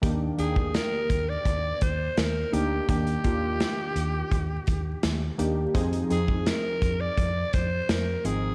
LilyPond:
<<
  \new Staff \with { instrumentName = "Alto saxophone" } { \time 4/4 \key ees \major \tempo 4 = 84 r8 aes'8 bes'8. d''8. c''8 bes'8 g'8 | g'2.~ g'8 r8 | r8 aes'8 bes'8. d''8. c''8 bes'8 aes'8 | }
  \new Staff \with { instrumentName = "Synth keys" } { \time 4/4 \key ees \major <ees bes d' g'>8 <ees bes d' g''>4. r4. <bes d' ees' g'>8 | <ees bes d' g'>8 <ees bes d' f'>4. r4. <ees bes d' g'>8 | <f c' ees' aes'>8 <f c' ees' aes'>4. r4. <f c' ees' aes'>8 | }
  \new Staff \with { instrumentName = "Fingered electric bass" } { \clef bass \time 4/4 \key ees \major ees,8 ees,8. r16 ees,8 ees,8 ees,8 ees,8 d,8 | ees,8 ees,8. r16 ees,8 ees,8 ees,8 ees,8 ees,8 | f,8 f,8. r16 f,8 f,8 f,8 f,8 aes,,8 | }
  \new DrumStaff \with { instrumentName = "Drums" } \drummode { \time 4/4 <hh bd>8 hh16 bd16 <hh sn>8 <hh bd>8 <hh bd>8 <hh bd>8 <hh sn>8 hh8 | <hh bd>16 hh16 <hh bd>8 <hh sn>8 hh8 <hh bd>8 <hh bd>8 <hh sn>8 hh8 | <hh bd>16 hh16 hh16 bd16 <hh sn>8 <hh bd>8 <hh bd>8 <hh bd>8 <hh sn>8 hh8 | }
>>